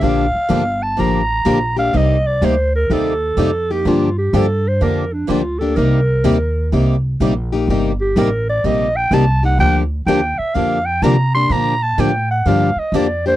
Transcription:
X:1
M:4/4
L:1/8
Q:"Swing" 1/4=125
K:Gm
V:1 name="Clarinet"
f3 a b3 f | e d c B A3 G | F G A c B D F A | B4 z4 |
z G B d e g a ^f | g z g =e f g b c' | b a g ^f =f e d c |]
V:2 name="Steel-string acoustic guitar"
[D,F,B,DG] z [D,F,B,DG] z [D,F,B,DG] z [D,F,B,DG] [B,DG] | [C,G,B,EG] z [C,G,B,EG] z [C,G,B,EG] z [C,G,B,EG] [B,EG] | [D,F,B,DG] z [D,F,B,DG] z [D,F,B,DG] z [D,F,B,DG] [B,DG] | [C,G,B,EG] z [C,G,B,EG] z [C,G,B,EG] z [C,G,B,EG] [B,EG] |
[C,G,B,EG] z [C,G,B,EG] z [C,G,B,EG] z [C,G,B,EG] [B,EG] | [D,F,B,DG] z [D,F,B,DG] z [D,F,B,DG] z [D,F,B,DG] [B,DG] | [D,F,B,DG] z [D,F,B,DG] z [D,F,B,DG] z [D,F,B,DG] [B,DG] |]
V:3 name="Steel-string acoustic guitar"
[D,F,B,DG] z [D,F,B,DG] z [D,F,B,DG] z [D,F,B,DG] z | [C,G,B,EG] z [C,G,B,EG] z [C,G,B,EG] z [C,G,B,EG] z | [D,F,B,DG] z [D,F,B,DG] z [D,F,B,DG] z [D,F,B,DG] z | [C,G,B,EG] z [C,G,B,EG] z [C,G,B,EG] z [C,G,B,EG] z |
[C,G,B,EG] z [C,G,B,EG] z [C,G,B,EG] z [C,G,B,EG] z | [D,F,B,DG] z [D,F,B,DG] z [D,F,B,DG] z [D,F,B,DG] z | [D,F,B,DG] z [D,F,B,DG] z [D,F,B,DG] z [D,F,B,DG] z |]
V:4 name="Upright bass" clef=bass
B,,, z G,,,2 A,,,2 B,,,2 | C,,2 D,,2 E,,2 F,,2 | G,,2 G,,2 F,,2 D,,2 | C,,2 E,,2 C,,2 B,,,2 |
G,,,2 A,,,2 B,,,2 C,,2 | D,,2 E,, z F,,2 C,2 | B,,2 A,,2 G,, z F,,2 |]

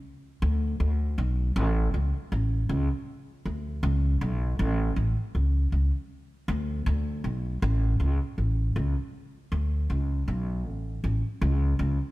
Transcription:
X:1
M:4/4
L:1/16
Q:1/4=79
K:Bm
V:1 name="Upright bass" clef=bass
z2 D,,2 D,,2 B,,,2 A,,,2 C,, z A,,,2 C,, z | z2 D,,2 C,,2 B,,,2 A,,,2 A,,, z C,,2 C,, z | z2 D,,2 D,,2 B,,,2 A,,,2 C,, z A,,,2 C,, z | z2 D,,2 C,,2 B,,,2 A,,,2 A,,, z C,,2 C,, z |]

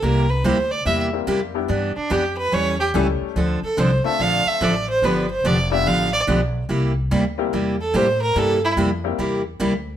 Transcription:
X:1
M:4/4
L:1/8
Q:"Swing" 1/4=144
K:Cmix
V:1 name="Fiddle"
B =B c d e z3 | z D G =B ^c G z2 | z A c e f e d c | =B c d e f d z2 |
z4 z A c B | A E z6 |]
V:2 name="Upright piano"
z4 z [G,B,CEG]2 [G,=B,DEG] | z6 [G,A,^CEG]2 | z3 [A,CDFA]3 z2 | z3 [G,=B,DFG] z4 |
z3 [G,B,CEG] z4 | z3 [G,B,CEG] z4 |]
V:3 name="Steel-string acoustic guitar"
[C,G,B,EG] z [C,G,B,EG] z [C,G,B,EG] z [C,G,B,EG] z | [E,=B,DG] z [E,B,DG] z [E,G,^CEA] z [E,G,CEA] z | [D,F,CDA] z [D,F,CDA] z [D,F,CDA] z [D,F,CDA] z | [D,F,=B,DG] z [D,F,B,DG] z [D,F,B,DG] z [D,F,B,DG] z |
[C,G,B,EG] z [C,G,B,EG] z [C,G,B,EG] z [C,G,B,EG] z | [C,G,B,EG] z [C,G,B,EG] z [C,G,B,EG] z [C,G,B,EG] z |]
V:4 name="Upright bass" clef=bass
C,,2 D,,2 E,,2 F,,2 | G,, z F,,2 E,,2 ^C,, z | D,, z C,, z B,,, z A,,,2 | G,,,2 F,,,2 A,,,2 =B,,,2 |
C,,2 D,,2 E,,2 A,,2 | G,,2 F,,2 E,,2 D,,2 |]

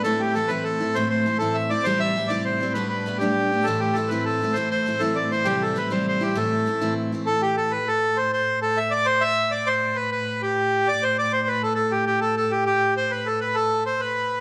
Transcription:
X:1
M:12/8
L:1/8
Q:3/8=133
K:Am
V:1 name="Accordion"
A G A B A2 c c2 A e d | c e2 d c2 B B2 G3 | A G A B A2 c c2 A d c | G A B c c G A4 z2 |
A G A B A2 c c2 A e d | c e2 d c2 B B2 G3 | d c d c B A A G G A A G | G2 c B A B A2 c B3 |]
V:2 name="Steel-string acoustic guitar"
[A,,E,A,CE]2 [E,A,CE] [A,,E,A,CE]2 [A,CE] [A,,E,A,CE]2 [E,A,CE] [A,,E,A,CE]2 [A,CE] | [C,E,G,CE]2 [E,G,CE] [C,E,G,CE]2 [G,CE] [G,A,B,D]2 [G,A,B,D] [G,A,B,D]2 [A,B,D] | [A,,E,A,CE]2 [E,A,CE] [A,,E,A,CE]2 [A,CE] [A,,E,A,CE]2 [E,A,CE] [A,,E,A,CE]2 [A,CE] | [C,E,G,CE]2 [E,G,CE] [C,E,G,CE]2 [G,CE] [A,,E,A,CE]2 [E,A,CE] [A,,E,A,CE]2 [A,CE] |
z12 | z12 | z12 | z12 |]
V:3 name="Cello" clef=bass
A,,12- | A,,12- | A,,12- | A,,12 |
A,,12- | A,,12- | A,,12- | A,,12 |]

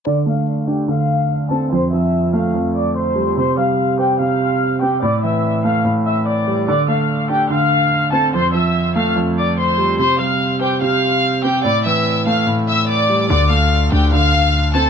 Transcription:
X:1
M:4/4
L:1/8
Q:1/4=145
K:Dm
V:1 name="Violin section"
[dd'] [ff']2 [Gg] [ff']3 [Aa] | [cc'] [ee']2 [ff'] z [dd'] [cc']2 | [cc'] [ff']2 [Gg] [ff']3 [Gg] | [dd'] [ee']2 [ff'] z [ee'] [dd']2 |
[dd'] [ff']2 [Gg] [ff']3 [Aa] | [cc'] [ee']2 [ff'] z [dd'] [cc']2 | [cc'] [ff']2 [Gg] [ff']3 [Gg] | [dd'] [ee']2 [ff'] z [ee'] [dd']2 |
[dd'] [ff']2 [Gg] [ff']3 [Aa] |]
V:2 name="Grand piano" clef=bass
D, A,2 D D,3 C | F,, F,2 A, F,,3 G, | C, G,2 c C,3 C | A,, E,2 A, A,,3 G, |
D, A,2 D D,3 C | F,, F,2 A, F,,3 G, | C, G,2 c C,3 C | A,, E,2 A, A,,3 G, |
D, A,2 D D,3 C |]
V:3 name="808-style bass" clef=bass
z8 | z8 | z8 | z8 |
z8 | z8 | z8 | z8 |
D,,3 D,,4- D,, |]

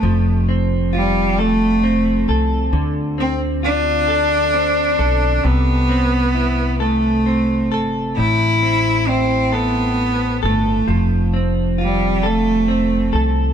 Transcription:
X:1
M:6/8
L:1/8
Q:3/8=44
K:C
V:1 name="Clean electric guitar"
F, C F A C A | D, C F A C A | C, C E A C A | A,, C E A2 A |
F, C F A C A |]
V:2 name="Cello"
A, z G, A,2 z | z C D4 | B,3 A,2 z | E2 C B,2 A,- |
A, z G, A,2 z |]
V:3 name="Upright bass" clef=bass
F,,,4- F,,, C,, | D,,4- D,, B,,, | C,,4- C,, G,,, | A,,,4- A,,, G,,, |
F,,,4- F,,, C,, |]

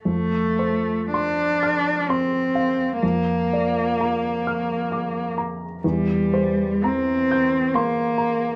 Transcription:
X:1
M:3/4
L:1/8
Q:1/4=64
K:F
V:1 name="Grand piano"
F,, c c' f' c' f | F,, d b f' d' b | E,, c b g' c' b |]
V:2 name="Cello"
A,2 D2 C2 | B,4- B, z | G,2 C2 B,2 |]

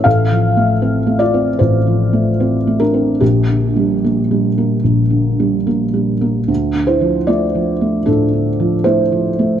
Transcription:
X:1
M:4/4
L:1/8
Q:1/4=75
K:Dm
V:1 name="Felt piano"
[Af]3 [Fd] [Fc]3 [DB] | [B,G]6 z2 | z [Ec] [Fd]2 [DA]2 [Ec]2 |]
V:2 name="Felt piano" clef=bass
(3A,,, F, A, (3C A, C (3A,,, F, A, (3C A, C | (3B,,, D, G, (3B, G, B, (3B,,, D, G, (3B, G, B, | (3D,, D, F, (3A, F, A, (3A,, D, F, (3A, F, A, |]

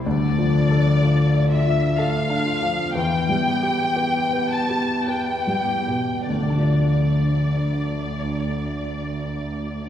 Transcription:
X:1
M:3/4
L:1/8
Q:1/4=55
K:Ddor
V:1 name="Violin section"
d3 e f2 | g3 a g2 | d6 |]
V:2 name="Harp"
D, D A F d F | E, B, G B, B G | [D,F,DAd]6 |]
V:3 name="Grand piano"
(3D,, F, A (3F d F (3A D F, | (3E,, G, G (3B, B G (3B, G, B,, | [D,,D,A,DFd]6 |]
V:4 name="Cello section" clef=bass
D,,6 | E,,6 | D,,6 |]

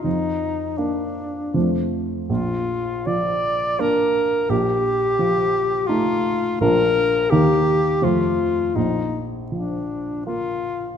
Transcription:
X:1
M:3/4
L:1/8
Q:1/4=81
K:Bb
V:1 name="Alto saxophone"
E2 D3 z | F2 d2 B2 | G4 F2 | B2 G2 F2 |
E z D2 F2 |]
V:2 name="Grand piano" clef=bass
F,,2 [B,D]2 [F,,F,A,C]2 | B,,,2 F,2 [B,D]2 | B,,,2 F,2 [A,E]2 | [B,,,F,B,D]2 [E,,E,B,E]2 [F,,F,A,C]2 |
B,,,2 F,2 B,2 |]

